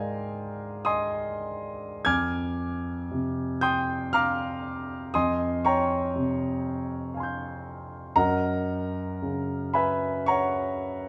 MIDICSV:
0, 0, Header, 1, 2, 480
1, 0, Start_track
1, 0, Tempo, 1197605
1, 825, Time_signature, 3, 2, 24, 8
1, 826, Tempo, 1039861
1, 1786, Tempo, 1005025
1, 3706, Tempo, 1052632
1, 4666, Tempo, 1129944
1, 5014, End_track
2, 0, Start_track
2, 0, Title_t, "Grand piano"
2, 0, Program_c, 0, 0
2, 0, Control_c, 0, 64, 127
2, 0, Note_on_c, 0, 44, 44
2, 0, Note_on_c, 0, 56, 37
2, 0, Note_on_c, 0, 68, 50
2, 0, Note_on_c, 0, 70, 51
2, 0, Note_on_c, 0, 72, 50
2, 0, Note_on_c, 0, 74, 51
2, 0, Note_on_c, 0, 75, 50
2, 0, Note_on_c, 0, 77, 50
2, 0, Note_on_c, 0, 79, 50
2, 0, Note_on_c, 0, 80, 68
2, 0, Note_on_c, 0, 82, 63
2, 0, Note_on_c, 0, 84, 70
2, 331, Note_off_c, 0, 74, 0
2, 331, Note_off_c, 0, 77, 0
2, 332, Note_off_c, 0, 68, 0
2, 339, Note_off_c, 0, 80, 0
2, 340, Note_on_c, 0, 87, 81
2, 344, Note_off_c, 0, 84, 0
2, 344, Note_on_c, 0, 84, 62
2, 345, Note_off_c, 0, 75, 0
2, 345, Note_on_c, 0, 75, 57
2, 345, Note_on_c, 0, 80, 62
2, 808, Note_off_c, 0, 75, 0
2, 808, Note_off_c, 0, 80, 0
2, 808, Note_off_c, 0, 84, 0
2, 810, Note_off_c, 0, 44, 0
2, 820, Note_on_c, 0, 92, 80
2, 822, Note_off_c, 0, 87, 0
2, 825, Note_on_c, 0, 41, 50
2, 825, Note_on_c, 0, 89, 62
2, 826, Note_off_c, 0, 56, 0
2, 826, Note_on_c, 0, 80, 64
2, 826, Note_on_c, 0, 86, 66
2, 834, Control_c, 0, 64, 0
2, 836, Note_off_c, 0, 82, 0
2, 838, Note_off_c, 0, 70, 0
2, 838, Note_off_c, 0, 72, 0
2, 838, Note_off_c, 0, 79, 0
2, 906, Control_c, 0, 64, 127
2, 1312, Note_on_c, 0, 48, 41
2, 1530, Note_off_c, 0, 80, 0
2, 1530, Note_off_c, 0, 86, 0
2, 1530, Note_off_c, 0, 89, 0
2, 1543, Note_on_c, 0, 91, 82
2, 1546, Note_off_c, 0, 92, 0
2, 1547, Note_on_c, 0, 79, 65
2, 1547, Note_on_c, 0, 87, 67
2, 1548, Note_on_c, 0, 84, 60
2, 1767, Note_off_c, 0, 79, 0
2, 1767, Note_off_c, 0, 87, 0
2, 1768, Note_off_c, 0, 84, 0
2, 1781, Note_on_c, 0, 89, 88
2, 1782, Note_off_c, 0, 91, 0
2, 1785, Note_on_c, 0, 82, 65
2, 1788, Note_on_c, 0, 77, 68
2, 1790, Note_on_c, 0, 86, 67
2, 2245, Note_off_c, 0, 41, 0
2, 2246, Note_off_c, 0, 82, 0
2, 2247, Note_off_c, 0, 77, 0
2, 2248, Note_off_c, 0, 86, 0
2, 2262, Note_off_c, 0, 89, 0
2, 2263, Note_on_c, 0, 87, 82
2, 2264, Note_off_c, 0, 48, 0
2, 2266, Note_on_c, 0, 41, 52
2, 2267, Note_on_c, 0, 75, 59
2, 2267, Note_on_c, 0, 80, 61
2, 2268, Note_on_c, 0, 84, 62
2, 2272, Control_c, 0, 64, 0
2, 2335, Control_c, 0, 64, 127
2, 2486, Note_off_c, 0, 75, 0
2, 2486, Note_off_c, 0, 80, 0
2, 2486, Note_off_c, 0, 84, 0
2, 2500, Note_off_c, 0, 87, 0
2, 2505, Note_on_c, 0, 85, 76
2, 2509, Note_on_c, 0, 73, 62
2, 2510, Note_on_c, 0, 79, 62
2, 2511, Note_on_c, 0, 82, 63
2, 2749, Note_on_c, 0, 48, 42
2, 3204, Note_off_c, 0, 73, 0
2, 3204, Note_off_c, 0, 79, 0
2, 3205, Note_off_c, 0, 82, 0
2, 3220, Note_on_c, 0, 77, 37
2, 3221, Note_off_c, 0, 85, 0
2, 3233, Note_on_c, 0, 80, 37
2, 3248, Note_on_c, 0, 84, 39
2, 3263, Note_on_c, 0, 91, 39
2, 3686, Note_off_c, 0, 41, 0
2, 3686, Note_off_c, 0, 77, 0
2, 3692, Note_off_c, 0, 80, 0
2, 3700, Note_off_c, 0, 84, 0
2, 3704, Note_on_c, 0, 82, 79
2, 3705, Note_on_c, 0, 42, 53
2, 3706, Note_on_c, 0, 75, 56
2, 3707, Note_off_c, 0, 91, 0
2, 3707, Note_on_c, 0, 70, 59
2, 3707, Note_on_c, 0, 78, 58
2, 3709, Note_off_c, 0, 48, 0
2, 3711, Control_c, 0, 64, 0
2, 3790, Control_c, 0, 64, 127
2, 4191, Note_on_c, 0, 49, 39
2, 4405, Note_off_c, 0, 75, 0
2, 4406, Note_off_c, 0, 70, 0
2, 4406, Note_off_c, 0, 78, 0
2, 4422, Note_off_c, 0, 82, 0
2, 4424, Note_on_c, 0, 83, 68
2, 4429, Note_on_c, 0, 80, 56
2, 4430, Note_on_c, 0, 76, 57
2, 4431, Note_on_c, 0, 71, 57
2, 4651, Note_off_c, 0, 76, 0
2, 4651, Note_off_c, 0, 80, 0
2, 4652, Note_off_c, 0, 71, 0
2, 4665, Note_off_c, 0, 83, 0
2, 4665, Note_on_c, 0, 85, 80
2, 4671, Note_on_c, 0, 73, 59
2, 4671, Note_on_c, 0, 82, 62
2, 4672, Note_on_c, 0, 78, 61
2, 5014, Note_off_c, 0, 42, 0
2, 5014, Note_off_c, 0, 49, 0
2, 5014, Note_off_c, 0, 73, 0
2, 5014, Note_off_c, 0, 78, 0
2, 5014, Note_off_c, 0, 82, 0
2, 5014, Note_off_c, 0, 85, 0
2, 5014, End_track
0, 0, End_of_file